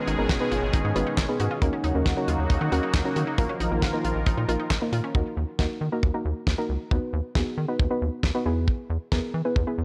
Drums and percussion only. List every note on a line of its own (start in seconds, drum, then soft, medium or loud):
0.07 closed hi-hat medium
0.29 kick loud
0.29 snare loud
0.29 closed hi-hat medium
0.52 closed hi-hat medium
0.73 kick loud
0.73 closed hi-hat medium
0.96 closed hi-hat medium
1.17 kick loud
1.17 snare loud
1.17 clap loud
1.17 closed hi-hat medium
1.40 closed hi-hat medium
1.62 kick loud
1.62 closed hi-hat medium
1.84 closed hi-hat medium
2.06 kick loud
2.06 snare loud
2.06 closed hi-hat medium
2.28 closed hi-hat medium
2.50 kick loud
2.50 closed hi-hat medium
2.72 closed hi-hat medium
2.94 kick loud
2.94 snare loud
2.94 clap loud
2.94 closed hi-hat medium
3.16 closed hi-hat medium
3.38 kick loud
3.38 closed hi-hat medium
3.60 closed hi-hat medium
3.82 kick loud
3.82 snare loud
3.82 closed hi-hat medium
4.05 closed hi-hat medium
4.26 kick loud
4.26 closed hi-hat medium
4.49 closed hi-hat medium
4.70 kick loud
4.70 snare loud
4.70 clap loud
4.70 closed hi-hat medium
4.93 closed hi-hat medium
5.15 kick loud
5.59 kick loud
5.59 snare loud
6.03 kick loud
6.47 kick loud
6.47 snare loud
6.91 kick loud
7.35 kick loud
7.35 snare loud
7.80 kick loud
8.23 kick loud
8.23 snare loud
8.68 kick loud
9.12 kick loud
9.12 snare loud
9.56 kick loud